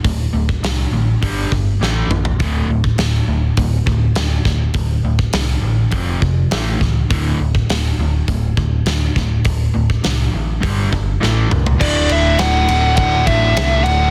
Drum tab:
CC |----------------|----------------|----------------|----------------|
RD |----------------|----------------|----------------|----------------|
HH |o---o---o-------|o---o---o---o---|o---o---o---o---|o---o---o---o---|
SD |----o-------o---|----o-------o-o-|----o-------o-o-|----o-------o-o-|
T2 |--------------o-|----------------|----------------|----------------|
FT |---------------o|----------------|----------------|----------------|
BD |o--o----o-o-----|o--o----o-o---o-|o--o----o-o---o-|o--o----o-o---o-|

CC |----------------|x---------------|
RD |----------------|--x-x-x-x-x-x-x-|
HH |o---o---o-------|----------------|
SD |----o-------o---|----o-------o---|
T2 |--------------o-|----------------|
FT |---------------o|----------------|
BD |o--o----o-o-----|o-------o-o-----|